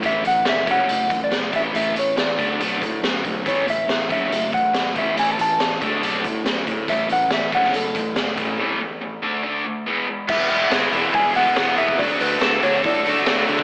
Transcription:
<<
  \new Staff \with { instrumentName = "Clean electric guitar" } { \time 4/4 \key d \lydian \tempo 4 = 140 e''8 fis''8 e''8 fis''4~ fis''16 d''8. e''8 | e''8 cis''8 d''4 r2 | cis''8 e''4 e''4 fis''4 e''8 | gis''16 a''16 a''2. r8 |
e''8 fis''8 e''8 fis''8 a'2~ | a'2. r4 | e''2 gis''8 fis''4 e''8 | d''8 b'4 cis''8 d''4. r8 | }
  \new Staff \with { instrumentName = "Overdriven electric guitar" } { \time 4/4 \key d \lydian r1 | r1 | r1 | r1 |
r1 | r1 | b8 b8 gis'8 e'8 gis'8 b8 b8 b8 | fis8 a8 a'8 d'8 a'8 a8 fis8 a8 | }
  \new Staff \with { instrumentName = "Overdriven electric guitar" } { \clef bass \time 4/4 \key d \lydian <a, e a>8 <a, e>8 <a, e>8 <fis a cis'>8 <fis a>8 <fis a>8 <fis a>8 <a, e a>8 | <a, e a>8 <a, e>8 <a, e>8 <d a d'>8 <d a d'>8 <d a>8 <d a>8 <d a>8 | <a, e a>8 <a, e>8 <a, e>8 <fis a cis'>8 <fis a>8 <fis a>8 <fis a>8 <a, e a>8 | <a, e a>8 <a, e>8 <a, e>8 <d a d'>8 <d a d'>8 <d a>8 <d a>8 <d a>8 |
<a, e a>8 <a, e>8 <a, e>8 <fis a cis'>8 <fis a>8 <fis a>8 <fis a>8 <a, e a>8 | <a, e a>8 <a, e>8 <a, e>8 <d a d'>8 <d a d'>8 <d a>8 <e gis b>8 <e gis>8 | <e gis b e'>8 <gis b e'>8 <e gis b e'>8 <gis b e'>4 <gis b e'>8 <e gis b e'>4 | <d a d' fis'>8 <a d' fis'>8 <d a d' fis'>8 <a d' fis'>4 <a d' fis'>8 <d a d' fis'>4 | }
  \new Staff \with { instrumentName = "Picked electric bass" } { \clef bass \time 4/4 \key d \lydian a,,8 a,,8 f,,8 fis,,8 fis,,8 a,,8 fis,,8 a,,8 | a,,8 a,,8 a,,8 d,8 b,,8 a,8 fis,8 b,,8 | a,,8 a,,8 a,,8 fis,,8 fis,,8 a,,8 gis,,8 a,,8 | a,,8 a,,8 a,,8 d,8 b,,8 a,8 fis,8 a,8 |
a,,8 a,,8 a,,8 fis,,8 fis,,8 a,,8 fis,,8 a,,8 | r1 | e,,8 e,,8 gis,,8 e,,8 e,,4 e,,8 e,,8 | d,8 d,8 d,8 d,8 a,8 d,8 d,8 d8 | }
  \new DrumStaff \with { instrumentName = "Drums" } \drummode { \time 4/4 <hh bd>8 hh8 <hh sn>8 <hh bd>8 hh8 <hh bd>8 <hh sn>8 <hh bd>8 | hh8 hh8 <hh sn>8 <hh bd>8 hh8 <hh bd>8 <hh sn>8 <hh bd>8 | <hh bd>8 hh8 <hh sn>8 <hh bd>8 hh8 <hh bd>8 <hh sn>8 <hh bd>8 | hh8 hh8 <hh sn>8 <hh bd>8 hh8 <hh bd>8 <hh sn>8 <hh bd>8 |
<hh bd>8 hh8 <hh sn>8 <hh bd>16 sn16 hh8 <hh bd>8 <hh sn>8 <hh bd>8 | r4 r4 r4 r4 | <cymc bd>8 hho8 <hho sn>8 hho8 <hho bd>8 hho8 <hho sn>8 hho16 bd16 | <hho bd>8 hho8 <hho sn>8 hho8 <hho bd>8 hho8 <hho sn>8 hho16 bd16 | }
>>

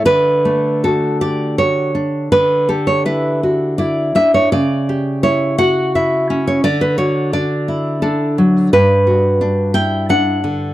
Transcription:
\new Staff \with { instrumentName = "Nylon-string guitar" } { \time 3/4 \key d \major \tempo 4 = 84 << { b'4 a'8 d''8 cis''4 | b'8 a'16 cis''16 b'4 d''8 e''16 cis''16 | d''4 cis''8 fis''8 e''8. cis''16 | d''16 b'16 cis''8 d''4 a'8 r8 |
b'4. g''8 fis''4 | } \\ { d8 a8 fis'8 g'8 fis'8 d'8 | d8 g'8 e'8 fis'8 e'8 d'8 | cis8 g'8 e'8 fis'8 e'8 cis'8 | d8 fis'8 d'8 e'8 d'8 fis8 |
g,8 fis'8 d'8 e'8 d'8 d8 | } >> }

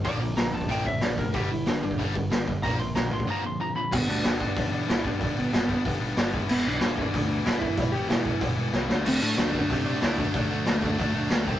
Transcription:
<<
  \new Staff \with { instrumentName = "Lead electric guitar" } { \time 4/4 \key d \mixolydian \tempo 4 = 187 d'''4 bes''8 a''8 g''8 e''8 d''8 bes'8 | g'8 e'8 d'8 d'8 r2 | bes''8 c'''8 bes''8 c'''8 bes''8 c'''8 bes''8 b''8 | b8 d'4~ d'16 d'8. d'8 e'8 d'8~ |
d'8 b8 b4 r2 | b8 d'4~ d'16 d'8. d'8 e'8 e'8~ | e'8 g'8 e'4 r2 | c'8 d'4~ d'16 d'8. d'8 e'8 d'8~ |
d'8 a8 a4 r2 | }
  \new Staff \with { instrumentName = "Distorted electric guitar" } { \clef bass \time 4/4 \key d \mixolydian <bes, d f>8 <bes, d>8 <bes, d>8 <bes, d>8 <bes, d f>8 <bes, d>8 <bes, d>8 <bes, d>8 | <g, d g>8 <g, d>8 <g, d>8 <g, d>8 <g, d g>8 <g, d>8 <g, d>8 <g, d>8 | <bes, d f>8 <bes, d>8 <bes, d>8 <bes, d>8 <bes, d f>8 <bes, d>8 <bes, d>8 <bes, d>8 | <g, d g b d'>8 <g, d g b d'>8 <g, d g b d'>8 <g, d g b d'>8 <g, d g b d'>8 <g, d g b d'>8 <g, d g b d'>8 <g, d g b d'>8 |
<g, d g b d'>8 <g, d g b d'>8 <g, d g b d'>8 <g, d g b d'>8 <g, d g b d'>8 <g, d g b d'>8 <g, d g b d'>8 <e g b e'>8 | <e g b e'>8 <e g b e'>8 <e g b e'>8 <e g b e'>8 <e g b e'>8 <e g b e'>8 <e g b e'>8 <e g b e'>8 | <e g b e'>8 <e g b e'>8 <e g b e'>8 <e g b e'>8 <e g b e'>8 <e g b e'>8 <e g b e'>8 <d fis a d'>8 | <d fis a d'>8 <d fis a d'>8 <d fis a d'>8 <d fis a d'>8 <d fis a d'>8 <d fis a d'>8 <d fis a d'>8 <d fis a d'>8 |
<d fis a d'>8 <d fis a d'>8 <d fis a d'>8 <d fis a d'>8 <d fis a d'>8 <d fis a d'>8 <d fis a d'>8 <c g c' e'>8 | }
  \new Staff \with { instrumentName = "Distorted electric guitar" } { \clef bass \time 4/4 \key d \mixolydian <bes, f bes>8 <bes, f>8 <bes, f>8 <bes, f>8 <bes, f bes>8 <bes, f>8 <bes, f>8 <bes, f>8 | <g, d g>8 <g, d>8 <g, d>8 <g, d>8 <g, d g>8 <g, d>8 <g, d>8 <g, d>8 | <bes, f bes>8 <bes, f>8 <bes, f>8 <bes, f>8 <bes, f bes>8 <bes, f>8 <bes, f>8 <bes, f>8 | r1 |
r1 | r1 | r1 | <d a d'>8 <d a d'>8 <d a d'>8 <d a d'>8 <d a d'>8 <d a d'>8 <d a d'>8 <d a d'>8 |
<d a d'>8 <d a d'>8 <d a d'>8 <d a d'>8 <d a d'>8 <d a d'>8 <d a d'>8 <c g c'>8 | }
  \new Staff \with { instrumentName = "Picked electric bass" } { \clef bass \time 4/4 \key d \mixolydian bes,,8 bes,,8 bes,,8 bes,,8 bes,,8 bes,,8 bes,,8 f,,8 | g,,8 g,,8 g,,8 g,,8 g,,8 g,,8 g,,8 g,,8 | bes,,8 bes,,8 bes,,8 a,,8 r2 | g,,8 d,8 g,,4 e,4 g,,4 |
g,,8 g,,8 g,,8 g,,8 g,,8 g,,8 g,,8 e,,8 | e,,8 b,,8 e,,4 d,4 e,,4 | e,,8 e,,8 e,,8 e,,8 e,,8 e,,8 c,8 d,8 | d,8 a,8 d,4 c4 d,4 |
d,8 d,8 d,8 d,8 d,8 d,8 d,8 c,8 | }
  \new DrumStaff \with { instrumentName = "Drums" } \drummode { \time 4/4 <hho bd>4 <hho sn>8. bd16 <hho bd>8 bd8 <hho sn>8 bd8 | <hho bd>4 <hho sn>8. bd16 <hho bd>8 bd8 <hho sn>8 bd8 | <hho bd>4 <hho sn>8. bd16 r4 r4 | <cymc bd>4 <hho sn>8 bd8 <hho bd>4 <hho sn>8 bd8 |
<hho bd>4 <hho sn>8 bd8 <hho bd>4 <hho sn>8 bd8 | cymc4 <hho sn>8 bd8 <hho bd>4 <hho sn>8 bd8 | <hho bd>4 <hho sn>8 bd8 <hho bd>4 sn8 sn8 | <cymc hho>4 <hho sn>8 bd8 <hho bd>4 <hho sn>8 bd8 |
<hho bd>4 <hho sn>8 bd8 <hho bd>4 <hho sn>8 bd8 | }
>>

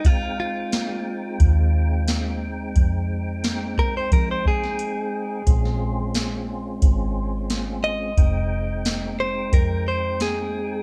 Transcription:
<<
  \new Staff \with { instrumentName = "Clean electric guitar" } { \time 4/4 \key f \minor \tempo 4 = 89 f'8 f'2. r8 | r4. bes'16 c''16 bes'16 c''16 aes'4.~ | aes'4. r2 ees''8~ | ees''4. c''8 bes'8 c''8 aes'4 | }
  \new Staff \with { instrumentName = "Tonewheel organ" } { \time 4/4 \key f \minor <aes c' ees' g''>1~ | <aes c' ees' g''>1 | <aes c' des' f'>1 | <aes c' ees' g''>1 | }
  \new Staff \with { instrumentName = "Fingered electric bass" } { \clef bass \time 4/4 \key f \minor r2 ees,2 | f,2 f2 | bes,,2 aes,,2 | f,,2 f,2 | }
  \new DrumStaff \with { instrumentName = "Drums" } \drummode { \time 4/4 <hh bd>4 <hh sn>4 <hh bd>4 <hh sn>4 | <hh bd>4 <hh sn>8 bd8 <hh bd>8 bd16 sn16 hh4 | <hh bd>16 sn8. <hh sn>4 <hh bd>4 <hh sn>4 | <hh bd>4 <hh sn>4 <hh bd>4 <hh sn>4 | }
>>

